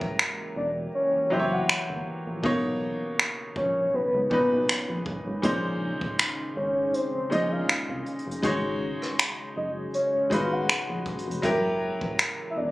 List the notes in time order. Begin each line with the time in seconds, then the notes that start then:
Already playing: E3 F#3 A#3 E4 G4 A#4
0.01 kick
0.19 finger snap
0.56 E1 D5
0.95 C#5
1.14 F#1
1.30 F#1 F#3 E4 G4 C5 E5
1.39 C#5
1.52 F#5
1.69 G1, finger snap
1.89 G1
2.27 A#1
2.43 B1 B2 C#3 A#3 C#4 D#4 C#5, kick
3.19 finger snap
3.56 A#1 C#5, kick
3.94 B1 B4
4.14 C#2
4.30 A#2 B2 D#4 B4, kick
4.52 B1
4.69 finger snap
4.89 A#1
5.06 F#1, kick
5.27 G#1
5.42 A#1 A#2 G#3 C#4 D#4 C5, kick, closed hi-hat
6.01 kick
6.19 finger snap, closed hi-hat
6.56 G#1 C#5
6.94 C5, closed hi-hat
7.14 A#1
7.30 A#1 A#2 G#3 C#4 D#4 D#5, closed hi-hat
7.52 F5
7.69 C2, finger snap, closed hi-hat
7.89 C2
8.06 closed hi-hat
8.19 closed hi-hat
8.27 F#1
8.31 closed hi-hat
8.42 G#1 G#3 D#4 F#4 C#5, kick, closed hi-hat
9.02 cross-stick
9.19 finger snap, closed hi-hat
9.57 F#1 D#5
9.94 C#5, closed hi-hat
10.14 G#1
10.30 G#1 G#3 D#4 F#4 B4 F5, kick, closed hi-hat
10.52 F#5
10.69 A#1, finger snap, closed hi-hat
10.89 A#1
11.06 kick, closed hi-hat
11.18 closed hi-hat
11.27 F1, closed hi-hat
11.42 F#1 E3 F#3 A#3 E4 G4 A#4, kick, closed hi-hat
12.01 kick
12.19 finger snap, closed hi-hat
12.50 E5
12.57 E1 D5